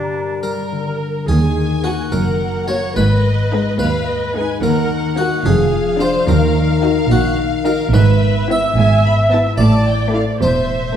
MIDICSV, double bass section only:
0, 0, Header, 1, 2, 480
1, 0, Start_track
1, 0, Key_signature, -6, "minor"
1, 0, Tempo, 564972
1, 1098, Time_signature, 6, 3, 24, 8
1, 2522, Tempo, 550964
1, 6845, Key_signature, 0, "minor"
1, 9489, End_track
2, 0, Start_track
2, 0, Title_t, "Double bass section"
2, 0, Program_c, 0, 48
2, 1088, Note_on_c, 0, 39, 67
2, 1666, Note_off_c, 0, 39, 0
2, 1801, Note_on_c, 0, 30, 55
2, 2377, Note_off_c, 0, 30, 0
2, 2512, Note_on_c, 0, 32, 63
2, 3097, Note_off_c, 0, 32, 0
2, 3234, Note_on_c, 0, 39, 62
2, 3818, Note_off_c, 0, 39, 0
2, 3960, Note_on_c, 0, 39, 69
2, 4541, Note_off_c, 0, 39, 0
2, 4688, Note_on_c, 0, 29, 66
2, 5263, Note_off_c, 0, 29, 0
2, 5402, Note_on_c, 0, 39, 78
2, 5980, Note_off_c, 0, 39, 0
2, 6128, Note_on_c, 0, 34, 72
2, 6703, Note_off_c, 0, 34, 0
2, 6843, Note_on_c, 0, 32, 80
2, 7435, Note_off_c, 0, 32, 0
2, 7576, Note_on_c, 0, 32, 76
2, 8149, Note_off_c, 0, 32, 0
2, 8289, Note_on_c, 0, 33, 72
2, 8860, Note_off_c, 0, 33, 0
2, 9003, Note_on_c, 0, 28, 65
2, 9489, Note_off_c, 0, 28, 0
2, 9489, End_track
0, 0, End_of_file